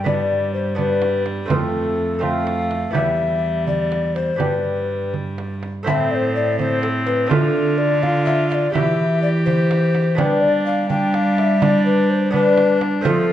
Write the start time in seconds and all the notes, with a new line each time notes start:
Already playing: G2
0.04 G3 B3 D4 D5, frame drum
0.54 C5
0.75 G3 B3 D4 B4, frame drum
1.02 frame drum
1.26 frame drum
1.46 F2 A3 C4 F4
1.50 F2 B4, frame drum
1.55 A4
2.19 A3 C4 F4 F5
2.23 frame drum
2.47 frame drum
2.71 frame drum
2.91 E2 G3 B3 E4 G4
2.95 E5, frame drum
3.67 D5, frame drum
3.92 frame drum
4.15 C5, frame drum
4.36 G2 G3 B3 D4 G4, frame drum
4.40 G2 B4
5.14 frame drum
5.38 frame drum
5.63 frame drum
5.83 A2 A3 C4 E4
5.87 E5, frame drum
6.11 D5
6.15 C5
6.35 D5
6.58 C4 C5, frame drum
6.82 A4, frame drum
7.06 B4, frame drum
7.26 D3 A3 D4 F4
7.30 D3 A4, frame drum
7.78 D5
8.03 F4 F5, frame drum
8.26 E5, frame drum
8.50 E5, frame drum
8.54 D5
8.72 B2 E3 E4 G4 E5, frame drum
9.22 D5
9.46 C5, frame drum
9.71 frame drum
9.95 frame drum
10.15 G3 B3 D4 C5, frame drum
10.23 B4
10.41 D5
10.66 F5
10.89 D4 G5, frame drum
11.14 F5, frame drum
11.38 E5, frame drum
11.60 D4 D5, frame drum
11.86 B4
12.09 C5
12.31 B3 D4 B4, frame drum
12.58 frame drum
12.81 frame drum
13.01 F3 A3 C4 F4 A4, frame drum